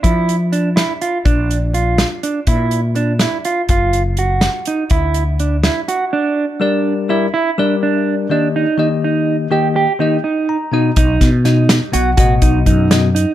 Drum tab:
HH |xxxxx|xxxxx|xxxxx|xxxxx|
SD |---o-|---o-|---o-|---o-|
BD |o----|o----|o----|o----|

HH |xxxxx|-----|-----|-----|
SD |---o-|-----|-----|-----|
BD |o----|-----|-----|-----|

HH |-----|xxxxx|xxxxx|
SD |-----|-ooo-|---o-|
BD |-----|oo---|ooo--|